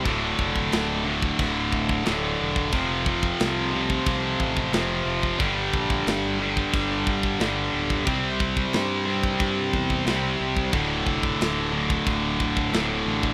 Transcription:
<<
  \new Staff \with { instrumentName = "Distorted electric guitar" } { \clef bass \time 4/4 \key d \minor \tempo 4 = 90 <d, a, d>4. <d, a, d>4. <d, a, d>4 | <f, c f>4. <f, c f>4. <f, c f>4 | <g, d g>4. <g, d g>4. <g, d g>4 | <c g c'>4. <c g c'>4. <c g c'>4 |
<d, a, d>4. <d, a, d>4. <d, a, d>4 | }
  \new Staff \with { instrumentName = "Distorted electric guitar" } { \clef bass \time 4/4 \key d \minor <d, a, d>2.~ <d, a, d>8 <d, a, d>8 | <f, c f>2.~ <f, c f>8 <f, c f>8 | <g, d g>2.~ <g, d g>8 <g, d g>8 | <c g c'>2.~ <c g c'>8 <c g c'>8 |
<d, a, d>2.~ <d, a, d>8 <d, a, d>8 | }
  \new Staff \with { instrumentName = "Distorted electric guitar" } { \clef bass \time 4/4 \key d \minor <d, a, d>1 | <f, c f>1 | <g, d g>1 | <c g c'>1 |
<d, a, d>1 | }
  \new Staff \with { instrumentName = "Fingered electric bass" } { \clef bass \time 4/4 \key d \minor d,,8 f,,8 d,,4 d,,8 d,,8 d,,8 e,,8 | f,,4 c,4 c,8 a,,8 f,,8 f,,8 | g,,8 bes,,8 g,,4 g,,8 g,,8 g,,8 d,,8 | c,4 g,4 g,8 e,8 c,8 c,8 |
d,,8 f,,8 d,,4 d,,8 d,,8 d,,8 a,,8 | }
  \new DrumStaff \with { instrumentName = "Drums" } \drummode { \time 4/4 <cymc bd>8 bd16 bd16 <cymc sn>8. bd16 <cymc bd>8 bd16 bd16 <cymc sn>8. bd16 | <cymc bd>8 bd16 bd16 <cymc sn>8. bd16 <cymc bd>8 bd16 bd16 <cymc sn>8. bd16 | <cymc bd>8 bd16 bd16 <cymc sn>8. bd16 <cymc bd>8 bd16 bd16 <cymc sn>8. bd16 | <cymc bd>8 bd16 bd16 <cymc sn>8. bd16 <cymc bd>8 bd16 bd16 <cymc sn>8. bd16 |
<cymc bd>8 bd16 bd16 <cymc sn>8. bd16 <cymc bd>8 bd16 bd16 <cymc sn>8. bd16 | }
>>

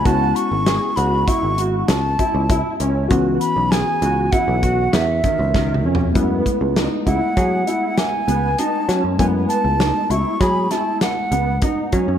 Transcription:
<<
  \new Staff \with { instrumentName = "Flute" } { \time 5/4 \key fis \dorian \tempo 4 = 99 a''8 cis'''4 b''8 cis'''8 r8 a''4. r8 | r8 b''8 gis''4 fis''4 e''4. r8 | r4. fis''4. gis''4 a''8. r16 | gis''8 a''4 cis'''8 b''8 a''8 fis''4. r8 | }
  \new Staff \with { instrumentName = "Grand piano" } { \time 5/4 \key fis \dorian fis'4 gis'8 fis'8 e'8 fis'4 e'8 e'8 cis'8 | fis'4 gis'8 fis'8 e'8 fis'4 dis8 dis8 cis'8 | b4 dis'8 e'8 gis'8 e'4 b8 dis'8 cis'8 | b4 dis'8 e'8 gis'8 e'4 b8 dis'8 cis'8 | }
  \new Staff \with { instrumentName = "Tine electric piano" } { \time 5/4 \key fis \dorian <gis b cis' e'>1~ <gis b cis' e'>4 | <e b cis' fis'>1~ <e b cis' fis'>4 | <gis a b e'>1~ <gis a b e'>4 | <gis a b e'>1~ <gis a b e'>4 | }
  \new Staff \with { instrumentName = "Picked electric bass" } { \clef bass \time 5/4 \key fis \dorian cis,8 r16 gis,,8 r16 cis,8 r16 gis,,8. cis,8 r16 cis,8 r16 cis,8 | cis,8 r16 b,,8 r16 cis,8 r16 b,,8. e,8 r16 cis,8. eis,8 | fis,8 r16 cis,8 r16 cis,16 r16 fis8 r4 cis,8 r8 fis16 fis,16 | fis,8 r16 cis,8 r16 cis,16 r16 fis8 r4 cis,8 r8 fis16 fis,16 | }
  \new DrumStaff \with { instrumentName = "Drums" } \drummode { \time 5/4 <hh bd>8 hh8 <hh sn>8 hh8 <hh bd>8 hh8 <hh sn>8 <hh bd>8 <hh bd>8 hh8 | <hh bd>8 hh8 <hh sn>8 hh8 <hh bd>8 <hh bd>8 <hh sn>8 <hh bd>8 \tuplet 3/2 { <bd sn>8 toml8 tomfh8 } | <hh bd>8 <hh bd>8 <hh sn>8 <hh bd>8 <hh bd>8 hh8 <hh sn>8 hh8 hh8 <hh sn>8 | <hh bd>8 hh8 <hh sn>8 hh8 <hh bd sn>8 <hh sn>8 <hh sn>8 hh8 <hh bd>8 <hh bd>8 | }
>>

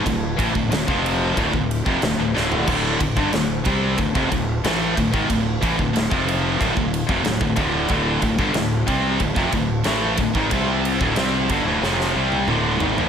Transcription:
<<
  \new Staff \with { instrumentName = "Distorted electric guitar" } { \clef bass \time 4/4 \key d \minor \tempo 4 = 92 <d, a,>8 <a, e>16 <d, a,>16 <d, a,>16 <f, c f>8. <d, a,>16 <d, a,>8 <f, c>16 <d, a,>16 <d, a,>16 <d, a, d>8 | <d, a, d>8 <d, a,>16 <g, d>16 <d, a,>8 <c g c'>8 <d, a,>16 <f, c>16 <d, a,>8 <a, e a>8 <d, a,>16 <gis, ees>16 | <d, a,>8 <a, e>16 <d, a,>16 <d, a,>16 <f, c f>8. <d, a,>16 <d, a,>8 <f, c>16 <d, a,>16 <d, a,>16 <d, a, d>8 | <d, a, d>8 <d, a,>16 <g, d>16 <d, a,>8 <c g c'>8 <d, a,>16 <f, c>16 <d, a,>8 <a, e a>8 <d, a,>16 <gis, ees>16 |
<c g c'>8. <d, a,>16 <c g c'>8 <g, d>16 <d, a,>16 <f, c f>8 <c g c'>8 <d, a, d>8 <gis, ees>16 <a, e>16 | }
  \new Staff \with { instrumentName = "Distorted electric guitar" } { \clef bass \time 4/4 \key d \minor <d, a,>8 <a, e>16 <d, a,>16 <d, a,>16 <f, c f>8. <d, a,>16 <d, a,>8 <f, c>16 <d, a,>16 <d, a,>16 <d, a, d>8 | <d, a, d>8 <d, a,>16 <g, d>16 <d, a,>8 <c g c'>8 <d, a,>16 <f, c>16 <d, a,>8 <a, e a>8 <d, a,>16 <gis, ees>16 | <d, a,>8 <a, e>16 <d, a,>16 <d, a,>16 <f, c f>8. <d, a,>16 <d, a,>8 <f, c>16 <d, a,>16 <d, a,>16 <d, a, d>8 | <d, a, d>8 <d, a,>16 <g, d>16 <d, a,>8 <c g c'>8 <d, a,>16 <f, c>16 <d, a,>8 <a, e a>8 <d, a,>16 <gis, ees>16 |
<c g c'>8. <d, a,>16 <c g c'>8 <g, d>16 <d, a,>16 <f, c f>8 <c g c'>8 <d, a, d>8 <gis, ees>16 <a, e>16 | }
  \new Staff \with { instrumentName = "Distorted electric guitar" } { \clef bass \time 4/4 \key d \minor <d, a,>8 <a, e>16 <d, a,>16 <d, a,>16 <f, c f>8. <d, a,>16 <d, a,>8 <f, c>16 <d, a,>16 <d, a,>16 <d, a, d>8 | <d, a, d>8 <d, a,>16 <g, d>16 <d, a,>8 <c g c'>8 <d, a,>16 <f, c>16 <d, a,>8 <a, e a>8 <d, a,>16 <gis, ees>16 | <d, a,>8 <a, e>16 <d, a,>16 <d, a,>16 <f, c f>8. <d, a,>16 <d, a,>8 <f, c>16 <d, a,>16 <d, a,>16 <d, a, d>8 | <d, a, d>8 <d, a,>16 <g, d>16 <d, a,>8 <c g c'>8 <d, a,>16 <f, c>16 <d, a,>8 <a, e a>8 <d, a,>16 <gis, ees>16 |
<c g c'>8. <d, a,>16 <c g c'>8 <g, d>16 <d, a,>16 <f, c f>8 <c g c'>8 <d, a, d>8 <gis, ees>16 <a, e>16 | }
  \new Staff \with { instrumentName = "Fingered electric bass" } { \clef bass \time 4/4 \key d \minor d,,8 a,,16 d,,16 d,,16 f,,8. d,,16 d,,8 f,,16 d,,16 d,,16 d,,8 | d,,8 d,,16 g,,16 d,,8 c,8 d,,16 f,,16 d,,8 a,,8 d,,16 gis,,16 | d,,8 a,,16 d,,16 d,,16 f,,8. d,,16 d,,8 f,,16 d,,16 d,,16 d,,8 | d,,8 d,,16 g,,16 d,,8 c,8 d,,16 f,,16 d,,8 a,,8 d,,16 gis,,16 |
c,8. d,,16 c,8 g,,16 d,,16 f,,8 c,8 d,,8 gis,,16 a,,16 | }
  \new DrumStaff \with { instrumentName = "Drums" } \drummode { \time 4/4 <bd cymr>8 <bd cymr>16 bd16 <cymr sn>16 bd16 cymr8 <bd cymr>16 bd16 cymr16 bd16 <cymr sn>8 sn16 tomfh16 | <cymc bd>8 <bd cymr>16 bd16 <cymr sn>8 <bd cymr>8 <bd cymr>16 bd16 <bd cymr>8 <cymr sn>8 <bd cymr>16 bd16 | <bd cymr>8 <bd cymr>16 bd16 <cymr sn>16 bd16 cymr8 <bd cymr>16 bd16 cymr16 bd16 <cymr sn>16 bd16 <bd cymr>8 | <bd cymr>8 <bd cymr>16 bd16 <cymr sn>8 <bd cymr>8 <bd cymr>16 bd16 <bd cymr>8 <cymr sn>8 <bd cymr>16 bd16 |
<bd cymr>8 cymr16 bd16 <cymr sn>8 <bd cymr>8 sn16 sn8 tommh16 toml8 tomfh16 tomfh16 | }
>>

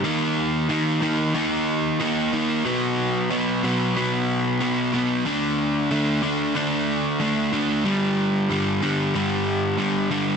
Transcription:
\new Staff \with { instrumentName = "Overdriven electric guitar" } { \clef bass \time 4/4 \key ees \lydian \tempo 4 = 92 <ees bes ees'>4 <ees bes ees'>8 <ees bes ees'>8 <ees bes ees'>4 <ees bes ees'>8 <ees bes ees'>8 | <b, fis b>4 <b, fis b>8 <b, fis b>8 <b, fis b>4 <b, fis b>8 <b, fis b>8 | <d a d'>4 <d a d'>8 <d a d'>8 <d a d'>4 <d a d'>8 <d a d'>8 | <g, d g>4 <g, d g>8 <g, d g>8 <g, d g>4 <g, d g>8 <g, d g>8 | }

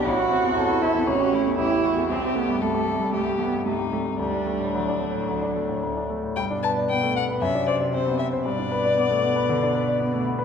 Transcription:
<<
  \new Staff \with { instrumentName = "Violin" } { \time 4/4 \key g \major \tempo 4 = 116 e'4 a'4 fis'8 e'8 g'8 fis'8 | g'4 a'4 g'4 ees'4 | d'2.~ d'8 r8 | g''8 a''8 g''8 fis''8 e''8 d''8 c''8 e''8 |
d''2.~ d''8 r8 | }
  \new Staff \with { instrumentName = "Cello" } { \time 4/4 \key g \major fis'4. e'8 cis'4 e'4 | c'8 b8 \tuplet 3/2 { a4 g8 } a8 b8 a8 g8 | g4 fis2~ fis8 r8 | b,2 c2 |
b,1 | }
  \new Staff \with { instrumentName = "Grand piano" } { \time 4/4 \key g \major a,,16 e'16 c'16 e,16 a,,16 e'16 c'16 e,16 a,,16 g'16 a16 e,16 a,,16 g'16 a16 e,16 | c,16 g'16 a16 g,16 c,16 g'16 a16 g,16 c,16 g'16 a16 g,16 c,16 g'16 a16 g,16 | d,16 d'16 a16 a,16 d,16 d'16 a16 a,16 d,16 d'16 a16 a,16 d,16 d'16 a16 a,16 | g,16 d'16 b'16 d''16 b16 a16 b16 b'16 fis,16 d'16 c''16 d''16 c'16 b16 c'16 c''16 |
g,16 d'16 b'16 d''16 b16 a16 b16 b'16 d16 d'16 b'16 d''16 b16 a16 b16 b'16 | }
>>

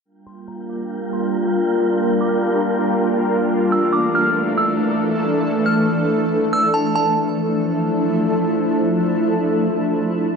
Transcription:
<<
  \new Staff \with { instrumentName = "Synth bell" } { \time 4/4 \key d \minor \tempo 4 = 139 r8 c'''8 bes''8 d'''4 c'''8 r4 | r4 d'''4 r2 | r8 e'''8 d'''8 f'''4 e'''8 r4 | r4 f'''4 r4 e'''8 a''8 |
a''2. r4 | r1 | }
  \new Staff \with { instrumentName = "Synth texture" } { \time 4/4 \key d \minor <f' bes' g''>1~ | <f' bes' g''>1 | <e d'' f''>1 | r1 |
r1 | r1 | }
  \new Staff \with { instrumentName = "Ambient pad" } { \time 4/4 \key d \minor << { <g bes f' bes'>1~ | <g bes f' bes'>1 | <e a a'>1~ | <e a a'>1 |
<f a d' e' a'>1~ | <f a d' e' a'>1 | } \\ { d'1~ | d'1~ | d'1~ | d'1 |
r1 | r1 | } >> }
>>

